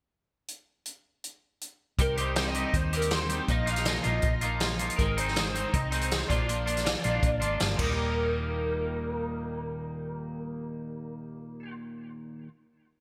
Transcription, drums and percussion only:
0.48 closed hi-hat
0.85 closed hi-hat
1.24 closed hi-hat
1.61 closed hi-hat
1.99 kick, closed hi-hat
2.17 closed hi-hat
2.36 snare, closed hi-hat
2.54 closed hi-hat
2.74 kick, closed hi-hat
2.93 closed hi-hat
3.02 closed hi-hat
3.10 snare, closed hi-hat
3.29 closed hi-hat
3.48 kick, closed hi-hat
3.67 closed hi-hat
3.76 snare, closed hi-hat
3.85 snare, closed hi-hat
4.04 closed hi-hat
4.22 kick, closed hi-hat
4.41 closed hi-hat
4.60 snare, closed hi-hat
4.79 closed hi-hat
4.90 closed hi-hat
4.99 kick, closed hi-hat
5.18 closed hi-hat
5.28 snare
5.36 snare, closed hi-hat
5.55 closed hi-hat
5.74 kick, closed hi-hat
5.92 closed hi-hat
6.01 closed hi-hat
6.11 snare, closed hi-hat
6.30 kick, closed hi-hat
6.49 closed hi-hat
6.67 closed hi-hat
6.77 snare, closed hi-hat
6.86 snare, closed hi-hat
7.04 closed hi-hat
7.23 kick, closed hi-hat
7.41 closed hi-hat
7.60 snare, closed hi-hat
7.79 kick, crash

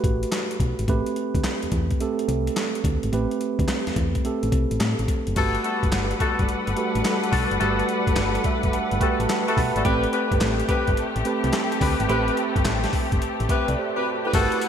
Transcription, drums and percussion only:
0.04 kick, closed hi-hat
0.23 closed hi-hat
0.32 snare, clap, closed hi-hat
0.51 closed hi-hat
0.60 kick, closed hi-hat
0.79 closed hi-hat
0.88 kick, closed hi-hat
1.06 closed hi-hat
1.16 closed hi-hat
1.35 kick, closed hi-hat
1.44 snare, clap, closed hi-hat
1.63 closed hi-hat
1.72 kick, closed hi-hat
1.91 kick, closed hi-hat
2.00 closed hi-hat
2.19 closed hi-hat
2.29 closed hi-hat
2.47 closed hi-hat
2.56 snare, clap, closed hi-hat
2.75 closed hi-hat
2.84 kick, closed hi-hat
3.03 closed hi-hat
3.13 closed hi-hat
3.31 closed hi-hat
3.41 closed hi-hat
3.59 kick, closed hi-hat
3.68 snare, clap, closed hi-hat
3.87 snare, closed hi-hat
3.96 kick, closed hi-hat
4.15 kick, closed hi-hat
4.25 closed hi-hat
4.43 closed hi-hat
4.52 kick, closed hi-hat
4.71 closed hi-hat
4.80 snare, clap, closed hi-hat
4.99 closed hi-hat
5.08 kick, closed hi-hat
5.27 closed hi-hat
5.36 kick, closed hi-hat, crash
5.55 closed hi-hat
5.64 closed hi-hat
5.83 kick, closed hi-hat
5.92 snare, clap, closed hi-hat
6.11 closed hi-hat
6.20 kick, closed hi-hat
6.39 kick, closed hi-hat
6.49 closed hi-hat
6.67 closed hi-hat
6.77 closed hi-hat
6.95 closed hi-hat
7.05 snare, clap, closed hi-hat
7.24 closed hi-hat
7.32 kick, open hi-hat
7.51 closed hi-hat
7.61 closed hi-hat
7.79 closed hi-hat
7.89 closed hi-hat
8.07 kick, closed hi-hat
8.16 snare, clap, closed hi-hat
8.35 closed hi-hat
8.44 kick, closed hi-hat
8.63 kick, closed hi-hat
8.73 closed hi-hat
8.91 closed hi-hat
9.01 kick, closed hi-hat
9.20 closed hi-hat
9.29 snare, clap, closed hi-hat
9.48 closed hi-hat
9.57 kick, open hi-hat
9.76 closed hi-hat
9.85 kick, closed hi-hat
10.04 closed hi-hat
10.13 closed hi-hat
10.32 kick, closed hi-hat
10.41 snare, clap, closed hi-hat
10.60 closed hi-hat
10.69 kick, closed hi-hat
10.87 kick, closed hi-hat
10.97 closed hi-hat
11.16 closed hi-hat
11.25 closed hi-hat
11.44 closed hi-hat
11.53 snare, clap, closed hi-hat
11.72 closed hi-hat
11.81 kick, open hi-hat
12.00 closed hi-hat
12.09 closed hi-hat
12.28 closed hi-hat
12.37 closed hi-hat
12.56 kick, closed hi-hat
12.65 snare, clap, closed hi-hat
12.84 snare, closed hi-hat
12.93 kick, open hi-hat
13.12 kick, closed hi-hat
13.22 closed hi-hat
13.40 closed hi-hat
13.49 kick, closed hi-hat
13.68 closed hi-hat
14.33 kick, closed hi-hat, crash, tambourine
14.52 closed hi-hat
14.61 closed hi-hat, tambourine

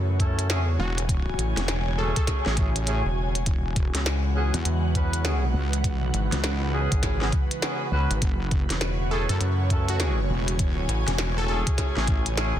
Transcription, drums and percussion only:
0.20 kick, closed hi-hat
0.39 closed hi-hat
0.50 snare, closed hi-hat
0.98 closed hi-hat
1.09 kick, closed hi-hat
1.39 closed hi-hat
1.57 snare, closed hi-hat
1.68 snare, closed hi-hat
2.16 kick, closed hi-hat
2.27 kick, snare, closed hi-hat
2.46 snare
2.57 kick, closed hi-hat
2.76 closed hi-hat
2.87 closed hi-hat
3.35 closed hi-hat
3.46 kick, closed hi-hat
3.76 kick, closed hi-hat
3.95 snare, closed hi-hat
4.06 snare, closed hi-hat
4.54 closed hi-hat
4.65 closed hi-hat
4.95 kick, closed hi-hat
5.13 closed hi-hat
5.25 snare, closed hi-hat
5.73 closed hi-hat
5.84 kick, closed hi-hat
6.14 closed hi-hat
6.32 snare, closed hi-hat
6.44 snare, closed hi-hat
6.92 kick, closed hi-hat
7.03 kick, snare, closed hi-hat
7.21 snare
7.33 kick, closed hi-hat
7.51 closed hi-hat
7.62 snare, closed hi-hat
8.11 closed hi-hat
8.22 kick, closed hi-hat
8.51 kick, closed hi-hat
8.70 snare, closed hi-hat
8.81 snare, closed hi-hat
9.29 closed hi-hat
9.41 closed hi-hat
9.70 kick, closed hi-hat
9.88 closed hi-hat
10.00 snare, closed hi-hat
10.48 closed hi-hat
10.59 kick, closed hi-hat
10.89 closed hi-hat
11.08 snare, closed hi-hat
11.18 snare, closed hi-hat
11.67 kick, closed hi-hat
11.78 kick, snare, closed hi-hat
11.97 snare
12.07 kick, closed hi-hat
12.26 closed hi-hat
12.38 snare, closed hi-hat

